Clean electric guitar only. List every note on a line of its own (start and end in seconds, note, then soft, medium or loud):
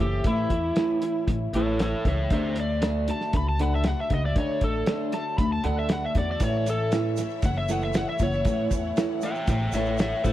0.00 0.23 A2 medium
0.00 0.24 E3 medium
0.26 0.50 A2 medium
0.26 0.50 E3 medium
0.26 0.50 A3 medium
0.52 0.74 A2 medium
0.52 0.75 E3 medium
0.77 1.01 A2 loud
0.77 1.01 E3 medium
0.77 1.02 A3 medium
1.03 1.26 A2 medium
1.03 1.26 E3 medium
1.29 1.52 A2 medium
1.29 1.52 E3 medium
1.55 1.79 A2 medium
1.55 1.79 E3 loud
1.55 1.80 A3 medium
1.81 2.04 A2 medium
1.81 2.04 E3 medium
2.06 2.29 A2 medium
2.06 2.29 E3 medium
2.32 2.56 D3 loud
2.32 2.56 A3 medium
2.32 2.56 D4 loud
2.57 2.80 D3 medium
2.57 2.80 A3 medium
2.82 3.06 D3 medium
2.82 3.07 A3 loud
2.82 3.07 D4 loud
3.09 3.32 D3 medium
3.09 3.32 A3 medium
3.34 3.57 D3 medium
3.34 3.58 A3 medium
3.60 3.84 D3 medium
3.60 3.85 A3 medium
3.60 3.85 D4 medium
3.85 4.09 D3 medium
3.85 4.09 A3 medium
4.11 4.34 D3 medium
4.11 4.34 A3 medium
4.37 4.61 D3 medium
4.37 4.61 A3 loud
4.37 4.62 D4 loud
4.63 4.86 D3 medium
4.63 4.86 A3 medium
4.88 5.12 D3 medium
4.88 5.13 A3 medium
4.88 5.13 D4 medium
5.14 5.37 D3 medium
5.14 5.37 A3 medium
5.40 5.63 D3 medium
5.40 5.63 A3 medium
5.65 5.89 D3 medium
5.65 5.89 A3 medium
5.65 5.90 D4 medium
5.90 6.14 D3 medium
5.90 6.14 A3 medium
6.16 6.39 D3 medium
6.16 6.40 A3 medium
6.40 6.65 A2 medium
6.40 6.66 E3 loud
6.40 6.66 A3 loud
6.68 6.91 E3 medium
6.93 7.17 A2 medium
6.93 7.18 E3 loud
6.93 7.18 A3 loud
7.18 7.42 A2 medium
7.18 7.42 E3 medium
7.44 7.67 A2 medium
7.44 7.68 E3 medium
7.69 7.94 A2 medium
7.69 7.94 E3 medium
7.69 7.94 A3 loud
7.95 8.19 A2 medium
7.95 8.19 E3 medium
8.21 8.44 A2 medium
8.21 8.44 E3 medium
8.46 8.70 A2 medium
8.46 8.71 E3 medium
8.46 8.71 A3 loud
8.72 8.95 A2 medium
8.72 8.95 E3 medium
8.97 9.22 A2 medium
8.97 9.22 E3 loud
8.97 9.22 A3 loud
9.23 9.46 A2 medium
9.23 9.46 E3 medium
9.48 9.71 A2 medium
9.48 9.72 E3 medium
9.74 9.98 A2 medium
9.74 9.98 E3 medium
9.74 9.99 A3 loud
9.99 10.22 A2 medium
9.99 10.23 E3 medium
10.25 10.33 A2 medium
10.25 10.33 E3 medium